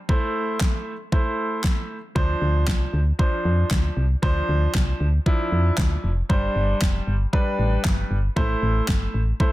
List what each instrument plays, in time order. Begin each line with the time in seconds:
0.09 grand piano A3 E4 C5, kick
0.61 kick, snare, clap
1.12 grand piano A3 E4 C5, kick
1.64 kick, snare, clap
2.15 fm bass D2, grand piano F3 D4 C5, kick
2.42 fm bass D2
2.67 fm bass C2, kick, snare, clap
2.93 fm bass D2
3.19 grand piano F3 D4 C5, kick
3.45 fm bass F2
3.71 fm bass D2, kick, snare, clap
3.97 fm bass C2
4.22 fm bass D2, grand piano F3 D4 C5, kick
4.49 fm bass D2
4.74 fm bass C2, kick, snare, clap
5.00 fm bass D2
5.26 grand piano F3 D4 E4, kick
5.52 fm bass F2
5.78 fm bass D2, kick, snare, clap
6.04 fm bass F1
6.29 fm bass G1, grand piano G3 D4 C5, kick
6.56 fm bass G1
6.81 fm bass F1, kick, snare, clap
7.07 fm bass G1
7.33 grand piano G3 D4 B4, kick
7.59 fm bass A1
7.85 fm bass G1, kick, snare, clap
8.11 fm bass G1
8.36 fm bass A1, grand piano A3 E4 C5, kick
8.62 fm bass A1
8.88 fm bass G1, kick, snare, clap
9.14 fm bass A1
9.40 grand piano A3 E4 C5, kick